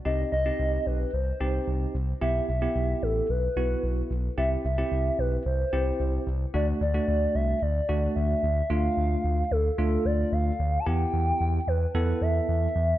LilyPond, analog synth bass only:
\new Staff \with { instrumentName = "Analog synth bass" } { \clef bass \time 4/4 \key c \lydian \tempo 4 = 111 c,8 c,8 c,8 b,,8 c,8 c,8 c,8 c,8 | b,,8 b,,8 b,,8 a,,8 b,,8 b,,8 b,,8 b,,8 | c,8 c,8 c,8 b,,8 c,8 c,8 c,8 c,8 | d,8 d,8 d,8 c,8 d,8 d,8 d,8 d,8 |
\key d \dorian d,8 d,8 d,8 d,8 d,8 d,8 d,8 d,8 | e,8 e,8 e,8 e,8 e,8 e,8 e,8 e,8 | }